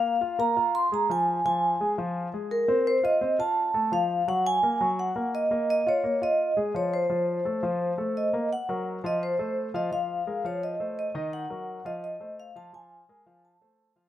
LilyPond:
<<
  \new Staff \with { instrumentName = "Vibraphone" } { \time 4/4 \key bes \minor \tempo 4 = 170 f''4 bes''4 c'''8 bes''8 aes''4 | aes''4. r4. bes'4 | c''8 ees''4 a''4. f''4 | ges''8 aes''4. ges''4 ees''4 |
ees''8 des''4 ees''4 r8 des''8 c''8~ | c''2. ees''4 | \key f \phrygian ges''4 r8 ees''8 c''4 r8 ees''8 | f''4. des''8 ees''4 ees''4 |
ges''4. ees''8 ees''4 f''8 a''8 | aes''2 a''4. r8 | }
  \new Staff \with { instrumentName = "Grand piano" } { \time 4/4 \key bes \minor <bes bes'>8 <f' f''>8 <bes bes'>8 <f' f''>4 <aes aes'>8 <f f'>4 | <f f'>4 <aes aes'>8 <f f'>4 <aes aes'>4 <c' c''>8~ | <c' c''>8 <f' f''>8 <c' c''>8 <f' f''>4 <a a'>8 <f f'>4 | <ges ges'>4 <bes bes'>8 <ges ges'>4 <bes bes'>4 <bes bes'>8~ |
<bes bes'>8 <f' f''>8 <bes bes'>8 <f' f''>4 <aes aes'>8 <f f'>4 | <f f'>4 <a a'>8 <f f'>4 <a a'>4 <bes bes'>8 | \key f \phrygian r8 <ges ges' bes'>4 <f f' f''>4 <a a' c''>4 <f f' f''>8 | <f f'>4 <aes aes' bes'>8 <f f' f''>4 <a a' c''>4 <ees ees' ees''>8~ |
<ees ees' ees''>8 <ges ges' bes'>4 <f f' f''>4 <a a' c''>4 <f f' f''>8 | <f f' f''>4 <aes aes' bes'>8 <f f' f''>4 <a a' c''>4 <f f' f''>8 | }
>>